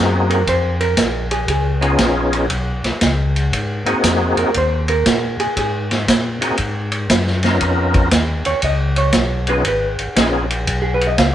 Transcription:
Already playing: F#2 A#3 C4 D#4 F#4 G#4
0.30 A#4, ride
0.46 F2 C5, kick, ride
0.81 A#4, ride
0.97 A#1, kick, snare, hi-hat pedal, ride
1.31 G#4, ride
1.48 C#2 G#4, kick, ride
1.81 B3 C#4 D#4 F4 G#4, ride
1.98 A#1, kick, snare, hi-hat pedal, ride
2.33 ride
2.50 B1, kick, ride
2.84 B1, snare, ride
3.01 C#2, kick, snare, hi-hat pedal, ride
3.36 ride
3.52 G#2, kick, ride
3.85 G#2 A#3 C4 D#4 F#4 G#4, ride
4.04 F2, kick, snare, hi-hat pedal, ride
4.36 F2 A#4, ride
4.54 D#2 C5, kick, ride
4.88 A#4, ride
5.06 A#2, kick, snare, hi-hat pedal, ride
5.38 A#2 G#4, ride
5.57 G#2 G#4, kick, ride
5.91 snare, ride
6.08 A#2, kick, snare, hi-hat pedal, ride
6.41 A#2 A#3 C4 D#4 F#4 G#4, ride
6.58 G#2, kick, ride
6.92 ride
7.10 F#2, kick, snare, hi-hat pedal, ride
7.27 snare
7.43 B3 C#4 D#4 F4 A#4, snare, ride
7.61 F2, kick, ride
7.94 kick, ride
8.11 D#2, kick, snare, hi-hat pedal, ride
8.45 D#2 C#5, ride
8.62 C#2 D#5, kick, ride
8.96 C#5, ride
9.12 B1, kick, snare, hi-hat pedal, ride
9.47 B3 C#4 D#4 F4 G#4 B4, ride
9.65 G#1 B4, kick, ride
9.99 G#1, ride
10.16 A#1 B3 C#4 D#4 F4 G#4, kick, snare, hi-hat pedal, ride
10.50 ride
10.67 B1, kick, ride
10.82 G#4
10.94 B4
11.01 ride
11.07 D#5
11.18 C#2 F5, kick, snare, hi-hat pedal, ride

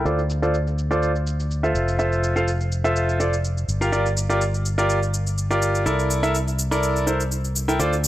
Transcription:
0.05 D2 F4 A4 C5 D5, shaker
0.19 shaker
0.30 shaker
0.42 F4 A4 C5 D5, shaker
0.54 shaker
0.67 shaker
0.78 shaker
0.91 F4 A4 C5 D5, shaker
1.03 shaker
1.16 shaker
1.27 shaker
1.40 shaker
1.51 shaker
1.63 F4 A4 C5 E5, shaker
1.75 F1, shaker
1.88 shaker
1.99 F4 A4 C5 E5, shaker
2.12 shaker
2.24 shaker
2.36 F4 A4 C5 F5, shaker
2.48 shaker
2.61 shaker
2.72 shaker
2.84 F4 A4 C5 E5, shaker
2.96 shaker
3.09 shaker
3.20 F4 A4 C5 D5, shaker
3.33 shaker
3.45 shaker
3.58 shaker
3.68 G1, shaker
3.81 F4 G4 A#4 F5, shaker
3.92 F4 G4 A#4 D5, shaker
4.06 shaker
4.17 shaker
4.29 F4 G4 A#4 D5, shaker
4.41 shaker
4.54 shaker
4.66 shaker
4.78 F4 G4 A#4 D5, shaker
4.90 shaker
5.03 shaker
5.14 shaker
5.27 shaker
5.38 shaker
5.51 F4 G4 A#4 D5, shaker
5.62 shaker
5.75 shaker
5.86 C2 E4 A4 A#4 D5, shaker
5.99 shaker
6.11 shaker
6.23 E4 A4 A#4 E5, shaker
6.35 shaker
6.48 shaker
6.59 shaker
6.71 E4 A4 A#4 D5, shaker
6.83 shaker
6.96 shaker
7.07 E4 A4 A#4 C5, shaker
7.20 shaker
7.32 shaker
7.45 shaker
7.56 shaker
7.68 E4 A4 A#4 G5, shaker
7.79 D2 F4 A4 C5 D5, shaker
7.93 shaker
8.04 shaker

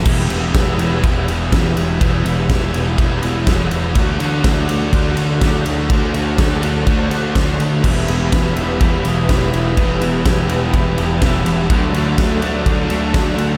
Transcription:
0.05 E1 E2 B2 E3 G3 B3 E4 G4 B4 E5 B5, kick, crash
0.29 E1 E3 G3 B3 E4, ride
0.34 B2
0.54 E1 E2 B2 E3 G3 B3 E4, kick, snare, ride
0.78 B2 E3 B3 E4, ride
0.82 G3
1.03 E1 E2 B2 E3 G3 B3 E4, kick, ride
1.27 E1 B2 E3 B3 E4, ride
1.31 G3
1.51 E1 E2 B2 E3 G3 B3 E4, kick, snare, ride
1.76 E1, ride
2.00 E1 E2 B2 E3 G3 B3 E4, kick, ride
2.24 E1 B2 E3 G3 B3 E4, ride
2.49 E1 E2 B2 E3 G3 B3 E4, kick, snare, ride
2.73 B2 E3 G3 B3 E4, ride
2.97 E1 E2 B2 E3 G3 B3 E4, kick, ride
3.22 E1 B2 E3 G3 B3 E4, ride
3.46 E1 E2 B2 E3 G3 B3 E4, kick, snare, ride
3.50 E3
3.71 E1, ride
3.95 D2 D3 A3 D4 F#4 A4 D5 A5, kick, ride
4.20 D2 A3 D4 F#4, ride
4.43 D2 D3 A3 D4 F#4, kick, snare, ride
4.68 A3 D4 F#4, ride
4.91 D2 D3 A3 D4 F#4, kick, ride
5.16 D2 A3 D4 F#4, ride
5.40 D2 D3 A3 D4 F#4, kick, snare, ride
5.66 D2, ride
5.89 D2 D3 A3 D4 F#4 C5, kick, ride
6.14 D2 A3 D4 F#4, ride
6.38 D2 D3 A3 D4 F#4, kick, snare, ride
6.62 A3 D4 F#4, ride
6.87 D2 D3 A3 D4 F#4, kick, ride
7.11 D2 A3 D4 F#4, ride
7.35 D2 D3 A3 D4 F#4, kick, snare, ride
7.47 snare
7.59 D2, ride
7.84 E1 E2 B2 E3 G3 B3 E4 G4 B4 E5 B5, kick, crash
8.07 E1 B2 E3 B3 E4, ride
8.11 G3
8.31 E1 E2 B2 E3 G3 B3 E4, kick, snare, ride
8.56 B2 E3 G3 B3 E4, ride
8.80 E1 E2 B2 E3 G3 B3 E4, kick, ride
9.04 E1 B2 E3 B3 E4 G4, ride
9.08 G3
9.28 E1 E2 B2 E3 G3 B3 E4, kick, snare, ride
9.42 snare
9.54 E1 E3, ride
9.77 E1 E2 B2 E3 G3 B3 E4 A5, kick, ride
10.01 E1 B2 E3 G3 B3 E4, ride
10.24 E1 E2 B2 E3 G3 B3 E4, kick, snare, ride
10.29 E3
10.49 E3 G3 B3 E4, ride
10.53 B2
10.73 E1 E2 B2 E3 G3 B3 E4, kick, ride
10.77 E3
10.98 E1 B2 E3 G3 B3 E4 G4, ride
11.22 E1 E2 B2 E3 G3 B3 E4, kick, snare, ride
11.34 snare
11.46 E1 E3, ride
11.70 D2 D3 F#3 A3 D4 F#4 A4 D5, kick, ride
11.93 D2 A3 D4, ride
11.98 F#3
12.18 D2 D3 F#3 A3 D4, kick, snare, ride
12.42 F#3 A3 D4, ride
12.66 D2 D3 F#3 A3 D4, kick, ride
12.90 D2 F#3 A3 D4 A4, ride
13.14 D2 D3 F#3 A3 D4, kick, snare, ride
13.37 D2 F#3, ride

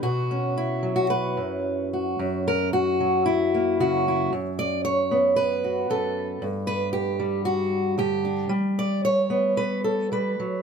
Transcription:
0.03 B2 F#4
0.31 C#4
0.57 E4
0.83 F#3
0.96 F#4
1.10 B4
1.37 F#2
1.93 F#4
2.19 F#2
2.48 A#4
2.73 F#4
3.00 F#3
3.26 E4
3.54 A#3
3.80 C#3 F#4
4.08 E4
4.33 F#2
4.59 D5
4.85 C#5
5.11 B3
5.36 B4
5.64 F#4
5.90 F#2 A4
6.42 G2
6.67 B4
6.93 G4
7.20 G3
7.45 F#4
7.98 D3 G4
8.25 D4
8.49 G3
8.79 D5
9.05 C#5
9.30 B3
9.57 B4
9.84 A4
10.12 G3 B4
10.40 F#3

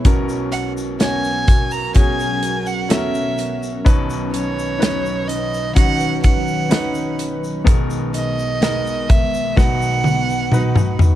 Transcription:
Already playing: B2
0.05 B1 B2 F#3 B3 C#4 F#4 A#4, kick, closed hi-hat, shaker
0.29 shaker
0.52 F#4 A#4 F#5, closed hi-hat, shaker
0.56 C#4
0.77 shaker
0.99 B3 C#4 F#4 A#4 C#5 G#5, snare, closed hi-hat, shaker
1.24 shaker
1.48 C#4 F#4 A#4, kick, closed hi-hat, shaker
1.71 A#5, shaker
1.94 B3 C#4 F#4 G#4 G#5, kick, closed hi-hat, shaker
1.99 A#4
2.19 shaker
2.43 C#4 F#4 A#4, closed hi-hat, shaker
2.66 F#5, shaker
2.89 B3 C#4 F#4 A4 A#4 E5, snare, closed hi-hat, shaker
2.97 A#4
3.15 shaker
3.38 closed hi-hat, shaker
3.63 shaker
3.84 B1 B2 D#3 F#3 C#4 D#4 B4, kick, closed hi-hat, shaker
4.10 shaker
4.32 F#3 C#4 D#4 B4 C#5, closed hi-hat, shaker
4.59 shaker
4.78 B2 D#3 F#3 C#4 D#4 B4, closed hi-hat, shaker
4.83 snare
5.05 shaker
5.27 F#3 C#4 D#4 B4 D#5, closed hi-hat, shaker
5.54 shaker
5.75 F#3 C#4 D#4 F#4 B4 F#5, kick, closed hi-hat, shaker
6.00 shaker
6.23 F#3 C#4 D#4 B4 F#5, kick, closed hi-hat, shaker
6.47 shaker
6.69 B2 D#3 F#3 C#4 D#4 B4, snare, closed hi-hat, shaker
6.94 shaker
7.19 closed hi-hat, shaker
7.44 shaker
7.64 B1 B2 D#3 G#3 B3 D#4 G#4 A#4, kick, closed hi-hat, shaker
7.69 A#4
7.90 shaker
8.14 G#3 B3 D#4 A#4 D#5, closed hi-hat, shaker
8.39 shaker
8.61 B2 D#3 G#3 B3 D#4 G#4 A#4, snare, closed hi-hat, shaker
8.87 shaker
9.09 G#3 B3 A#4 E5, kick, closed hi-hat, shaker
9.34 shaker
9.56 B1 B2 F#3 B3 D#4 F#4 B4 F#5, kick, snare, shaker
9.82 shaker
10.04 F#3 B3 D#4 B4, high tom, shaker
10.30 shaker
10.52 B2 D#3 F#3 B3 D#4 F#4 B4, mid tom, shaker
10.76 mid tom, shaker
10.99 floor tom, shaker

